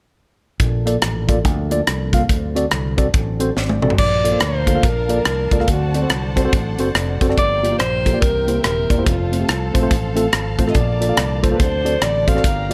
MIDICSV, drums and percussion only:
0, 0, Header, 1, 2, 480
1, 0, Start_track
1, 0, Key_signature, -2, "major"
1, 0, Tempo, 423131
1, 676, Time_signature, 4, 2, 24, 8
1, 14448, End_track
2, 0, Start_track
2, 0, Title_t, "Drums"
2, 678, Note_on_c, 9, 42, 78
2, 679, Note_on_c, 9, 36, 92
2, 792, Note_off_c, 9, 42, 0
2, 793, Note_off_c, 9, 36, 0
2, 986, Note_on_c, 9, 42, 71
2, 1099, Note_off_c, 9, 42, 0
2, 1155, Note_on_c, 9, 42, 79
2, 1160, Note_on_c, 9, 37, 93
2, 1269, Note_off_c, 9, 42, 0
2, 1273, Note_off_c, 9, 37, 0
2, 1459, Note_on_c, 9, 36, 77
2, 1460, Note_on_c, 9, 37, 28
2, 1462, Note_on_c, 9, 42, 64
2, 1572, Note_off_c, 9, 36, 0
2, 1573, Note_off_c, 9, 37, 0
2, 1576, Note_off_c, 9, 42, 0
2, 1643, Note_on_c, 9, 36, 107
2, 1647, Note_on_c, 9, 42, 74
2, 1757, Note_off_c, 9, 36, 0
2, 1760, Note_off_c, 9, 42, 0
2, 1942, Note_on_c, 9, 42, 66
2, 2055, Note_off_c, 9, 42, 0
2, 2123, Note_on_c, 9, 42, 83
2, 2125, Note_on_c, 9, 37, 91
2, 2236, Note_off_c, 9, 42, 0
2, 2239, Note_off_c, 9, 37, 0
2, 2416, Note_on_c, 9, 36, 83
2, 2425, Note_on_c, 9, 42, 62
2, 2530, Note_off_c, 9, 36, 0
2, 2538, Note_off_c, 9, 42, 0
2, 2602, Note_on_c, 9, 36, 84
2, 2605, Note_on_c, 9, 42, 73
2, 2715, Note_off_c, 9, 36, 0
2, 2718, Note_off_c, 9, 42, 0
2, 2909, Note_on_c, 9, 42, 74
2, 3022, Note_off_c, 9, 42, 0
2, 3074, Note_on_c, 9, 42, 70
2, 3079, Note_on_c, 9, 37, 93
2, 3188, Note_off_c, 9, 42, 0
2, 3192, Note_off_c, 9, 37, 0
2, 3379, Note_on_c, 9, 36, 81
2, 3382, Note_on_c, 9, 42, 65
2, 3493, Note_off_c, 9, 36, 0
2, 3496, Note_off_c, 9, 42, 0
2, 3558, Note_on_c, 9, 42, 71
2, 3562, Note_on_c, 9, 36, 117
2, 3672, Note_off_c, 9, 42, 0
2, 3675, Note_off_c, 9, 36, 0
2, 3858, Note_on_c, 9, 42, 67
2, 3971, Note_off_c, 9, 42, 0
2, 4045, Note_on_c, 9, 38, 45
2, 4158, Note_off_c, 9, 38, 0
2, 4190, Note_on_c, 9, 48, 58
2, 4303, Note_off_c, 9, 48, 0
2, 4337, Note_on_c, 9, 45, 69
2, 4426, Note_on_c, 9, 43, 69
2, 4451, Note_off_c, 9, 45, 0
2, 4517, Note_on_c, 9, 49, 75
2, 4519, Note_on_c, 9, 36, 86
2, 4539, Note_off_c, 9, 43, 0
2, 4631, Note_off_c, 9, 49, 0
2, 4633, Note_off_c, 9, 36, 0
2, 4823, Note_on_c, 9, 42, 69
2, 4937, Note_off_c, 9, 42, 0
2, 4993, Note_on_c, 9, 42, 71
2, 4998, Note_on_c, 9, 37, 107
2, 5107, Note_off_c, 9, 42, 0
2, 5111, Note_off_c, 9, 37, 0
2, 5298, Note_on_c, 9, 36, 79
2, 5299, Note_on_c, 9, 42, 63
2, 5411, Note_off_c, 9, 36, 0
2, 5413, Note_off_c, 9, 42, 0
2, 5483, Note_on_c, 9, 36, 101
2, 5483, Note_on_c, 9, 42, 73
2, 5596, Note_off_c, 9, 36, 0
2, 5596, Note_off_c, 9, 42, 0
2, 5779, Note_on_c, 9, 42, 64
2, 5892, Note_off_c, 9, 42, 0
2, 5959, Note_on_c, 9, 42, 73
2, 5961, Note_on_c, 9, 37, 94
2, 6072, Note_off_c, 9, 42, 0
2, 6075, Note_off_c, 9, 37, 0
2, 6255, Note_on_c, 9, 36, 85
2, 6259, Note_on_c, 9, 42, 54
2, 6355, Note_on_c, 9, 37, 30
2, 6369, Note_off_c, 9, 36, 0
2, 6372, Note_off_c, 9, 42, 0
2, 6440, Note_on_c, 9, 42, 79
2, 6442, Note_on_c, 9, 36, 85
2, 6468, Note_off_c, 9, 37, 0
2, 6554, Note_off_c, 9, 42, 0
2, 6556, Note_off_c, 9, 36, 0
2, 6743, Note_on_c, 9, 42, 70
2, 6856, Note_off_c, 9, 42, 0
2, 6916, Note_on_c, 9, 42, 76
2, 6921, Note_on_c, 9, 37, 101
2, 7030, Note_off_c, 9, 42, 0
2, 7034, Note_off_c, 9, 37, 0
2, 7222, Note_on_c, 9, 37, 30
2, 7224, Note_on_c, 9, 36, 70
2, 7225, Note_on_c, 9, 42, 67
2, 7336, Note_off_c, 9, 37, 0
2, 7337, Note_off_c, 9, 36, 0
2, 7338, Note_off_c, 9, 42, 0
2, 7404, Note_on_c, 9, 42, 70
2, 7407, Note_on_c, 9, 36, 111
2, 7517, Note_off_c, 9, 42, 0
2, 7520, Note_off_c, 9, 36, 0
2, 7698, Note_on_c, 9, 42, 68
2, 7811, Note_off_c, 9, 42, 0
2, 7882, Note_on_c, 9, 42, 75
2, 7885, Note_on_c, 9, 37, 92
2, 7996, Note_off_c, 9, 42, 0
2, 7999, Note_off_c, 9, 37, 0
2, 8180, Note_on_c, 9, 36, 81
2, 8189, Note_on_c, 9, 42, 64
2, 8287, Note_on_c, 9, 37, 32
2, 8294, Note_off_c, 9, 36, 0
2, 8302, Note_off_c, 9, 42, 0
2, 8367, Note_on_c, 9, 36, 87
2, 8369, Note_on_c, 9, 42, 73
2, 8401, Note_off_c, 9, 37, 0
2, 8480, Note_off_c, 9, 36, 0
2, 8483, Note_off_c, 9, 42, 0
2, 8673, Note_on_c, 9, 42, 73
2, 8786, Note_off_c, 9, 42, 0
2, 8844, Note_on_c, 9, 42, 76
2, 8849, Note_on_c, 9, 37, 95
2, 8958, Note_off_c, 9, 42, 0
2, 8962, Note_off_c, 9, 37, 0
2, 9144, Note_on_c, 9, 36, 76
2, 9150, Note_on_c, 9, 42, 71
2, 9258, Note_off_c, 9, 36, 0
2, 9263, Note_off_c, 9, 42, 0
2, 9327, Note_on_c, 9, 36, 110
2, 9327, Note_on_c, 9, 42, 70
2, 9441, Note_off_c, 9, 36, 0
2, 9441, Note_off_c, 9, 42, 0
2, 9621, Note_on_c, 9, 42, 64
2, 9734, Note_off_c, 9, 42, 0
2, 9802, Note_on_c, 9, 42, 74
2, 9804, Note_on_c, 9, 37, 86
2, 9915, Note_off_c, 9, 42, 0
2, 9918, Note_off_c, 9, 37, 0
2, 10098, Note_on_c, 9, 36, 82
2, 10104, Note_on_c, 9, 42, 54
2, 10211, Note_off_c, 9, 36, 0
2, 10218, Note_off_c, 9, 42, 0
2, 10283, Note_on_c, 9, 36, 87
2, 10285, Note_on_c, 9, 42, 83
2, 10397, Note_off_c, 9, 36, 0
2, 10398, Note_off_c, 9, 42, 0
2, 10584, Note_on_c, 9, 42, 73
2, 10697, Note_off_c, 9, 42, 0
2, 10761, Note_on_c, 9, 42, 72
2, 10766, Note_on_c, 9, 37, 93
2, 10875, Note_off_c, 9, 42, 0
2, 10880, Note_off_c, 9, 37, 0
2, 11059, Note_on_c, 9, 36, 83
2, 11062, Note_on_c, 9, 42, 64
2, 11172, Note_off_c, 9, 36, 0
2, 11175, Note_off_c, 9, 42, 0
2, 11239, Note_on_c, 9, 42, 73
2, 11240, Note_on_c, 9, 36, 105
2, 11353, Note_off_c, 9, 42, 0
2, 11354, Note_off_c, 9, 36, 0
2, 11532, Note_on_c, 9, 42, 68
2, 11646, Note_off_c, 9, 42, 0
2, 11715, Note_on_c, 9, 42, 78
2, 11718, Note_on_c, 9, 37, 97
2, 11829, Note_off_c, 9, 42, 0
2, 11832, Note_off_c, 9, 37, 0
2, 12009, Note_on_c, 9, 36, 74
2, 12015, Note_on_c, 9, 42, 51
2, 12112, Note_on_c, 9, 37, 32
2, 12123, Note_off_c, 9, 36, 0
2, 12128, Note_off_c, 9, 42, 0
2, 12190, Note_on_c, 9, 42, 71
2, 12194, Note_on_c, 9, 36, 90
2, 12225, Note_off_c, 9, 37, 0
2, 12304, Note_off_c, 9, 42, 0
2, 12308, Note_off_c, 9, 36, 0
2, 12498, Note_on_c, 9, 42, 76
2, 12612, Note_off_c, 9, 42, 0
2, 12672, Note_on_c, 9, 42, 77
2, 12676, Note_on_c, 9, 37, 103
2, 12785, Note_off_c, 9, 42, 0
2, 12790, Note_off_c, 9, 37, 0
2, 12973, Note_on_c, 9, 36, 82
2, 12975, Note_on_c, 9, 37, 26
2, 12978, Note_on_c, 9, 42, 73
2, 13087, Note_off_c, 9, 36, 0
2, 13088, Note_off_c, 9, 37, 0
2, 13091, Note_off_c, 9, 42, 0
2, 13156, Note_on_c, 9, 36, 99
2, 13159, Note_on_c, 9, 42, 74
2, 13270, Note_off_c, 9, 36, 0
2, 13272, Note_off_c, 9, 42, 0
2, 13455, Note_on_c, 9, 42, 61
2, 13569, Note_off_c, 9, 42, 0
2, 13631, Note_on_c, 9, 42, 87
2, 13634, Note_on_c, 9, 37, 90
2, 13745, Note_off_c, 9, 42, 0
2, 13747, Note_off_c, 9, 37, 0
2, 13927, Note_on_c, 9, 36, 79
2, 13935, Note_on_c, 9, 42, 54
2, 14031, Note_on_c, 9, 37, 33
2, 14040, Note_off_c, 9, 36, 0
2, 14048, Note_off_c, 9, 42, 0
2, 14113, Note_on_c, 9, 36, 95
2, 14117, Note_on_c, 9, 42, 87
2, 14145, Note_off_c, 9, 37, 0
2, 14227, Note_off_c, 9, 36, 0
2, 14230, Note_off_c, 9, 42, 0
2, 14448, End_track
0, 0, End_of_file